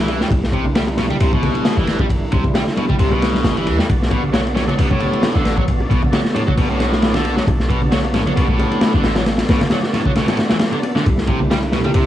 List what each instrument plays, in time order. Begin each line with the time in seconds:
Already playing: 808-style bass C2, tonewheel organ G3 E4
0.00 overdriven electric guitar E3
0.08 ride, high bongo
0.21 overdriven electric guitar G3, snare
0.30 808-style bass C2, kick, ride, high bongo
0.43 snare
0.52 overdriven electric guitar C3, kick, ride
0.65 high bongo, low conga
0.75 overdriven electric guitar G3, snare, ride
0.87 ride, high bongo
0.97 overdriven electric guitar B2, snare, ride, high conga
1.10 overdriven electric guitar G3, ride, low conga
1.20 808-style bass C2, overdriven electric guitar C3, ride, high bongo
1.33 overdriven electric guitar B2, kick
1.43 ride, high bongo, low conga
1.55 ride, high conga
1.65 snare, ride
1.77 808-style bass G1, overdriven electric guitar E3, high bongo
1.87 snare, ride
1.99 overdriven electric guitar G3, kick, high bongo
2.10 kick, ride
2.32 808-style bass C2, overdriven electric guitar C3, kick, ride, high bongo
2.44 kick, low conga
2.54 overdriven electric guitar G3, snare, ride, high bongo
2.67 snare
2.77 overdriven electric guitar B2, ride, high conga
2.89 overdriven electric guitar G3, kick, high bongo, low conga
2.99 808-style bass C2, overdriven electric guitar C3, ride
3.11 overdriven electric guitar B2, high bongo
3.22 snare, ride
3.34 snare, high conga
3.44 808-style bass G1, snare, ride, high bongo
3.56 overdriven electric guitar E3, ride
3.67 808-style bass E2, ride, high bongo
3.78 overdriven electric guitar G3, snare
3.89 808-style bass B1, tonewheel organ B3 F#4 D5, kick, ride, high bongo
4.02 snare
4.11 overdriven electric guitar B2, kick, ride, high bongo
4.24 low conga
4.33 overdriven electric guitar F#3, snare, ride
4.46 ride, high bongo
4.55 overdriven electric guitar A2, snare, ride, high conga
4.68 overdriven electric guitar F#3, ride, high bongo, low conga
4.78 808-style bass B1, overdriven electric guitar B2, ride
4.91 overdriven electric guitar A2, kick
5.00 ride, high bongo, low conga
5.13 ride, high conga
5.23 snare, ride, high bongo
5.35 808-style bass A1, overdriven electric guitar D3
5.45 snare, ride
5.58 overdriven electric guitar F#3, kick, high bongo
5.68 kick, ride
5.80 high bongo
5.90 808-style bass B1, overdriven electric guitar B2, kick, ride
6.02 kick, low conga
6.13 overdriven electric guitar F#3, snare, ride, high bongo
6.25 snare
6.35 overdriven electric guitar A2, ride, high bongo, high conga
6.47 overdriven electric guitar F#3, kick, low conga
6.57 808-style bass B1, overdriven electric guitar B2, ride
6.70 overdriven electric guitar A2, high bongo
6.80 snare, ride
6.92 snare, high bongo, high conga
7.02 snare, ride
7.14 overdriven electric guitar D3, snare, ride
7.25 ride, high bongo
7.37 overdriven electric guitar F#3, snare
7.47 808-style bass B1, kick, ride, high bongo
7.60 snare
7.70 overdriven electric guitar B2, kick, ride
7.82 high bongo, low conga
7.92 overdriven electric guitar F#3, snare, ride
8.04 ride, high bongo
8.14 overdriven electric guitar A2, snare, ride, high conga
8.27 overdriven electric guitar F#3, ride, low conga
8.36 808-style bass B1, overdriven electric guitar B2, ride, high bongo
8.48 overdriven electric guitar A2, kick
8.59 ride, high bongo, low conga
8.71 ride, high conga
8.81 snare, ride
8.94 808-style bass A1, overdriven electric guitar D3, high bongo
9.04 snare, ride
9.16 overdriven electric guitar F#3, snare, ride, high bongo
9.26 snare, ride
9.38 snare, ride
9.48 808-style bass B1, overdriven electric guitar B2, snare, ride, high bongo
9.60 snare, ride, low conga
9.70 overdriven electric guitar F#3, snare, ride, high bongo
9.83 snare
9.93 overdriven electric guitar A2, snare, ride, high conga
10.05 overdriven electric guitar F#3, kick, high bongo, low conga
10.15 overdriven electric guitar B2, snare, ride
10.28 overdriven electric guitar A2, snare, ride, high bongo
10.37 snare, ride
10.50 overdriven electric guitar E3, snare, ride, high conga
10.59 snare, ride, high bongo
10.72 overdriven electric guitar D3, ride
10.83 ride, high bongo
10.95 overdriven electric guitar D3, snare
11.06 808-style bass C2, tonewheel organ G3 E4, kick, ride, high bongo
11.18 snare
11.27 overdriven electric guitar C3, kick, ride, high bongo
11.40 low conga
11.50 overdriven electric guitar G3, snare, ride
11.63 ride, high bongo
11.72 overdriven electric guitar B2, snare, ride, high conga
11.84 overdriven electric guitar G3, ride, high bongo, low conga
11.94 808-style bass C2, overdriven electric guitar C3, ride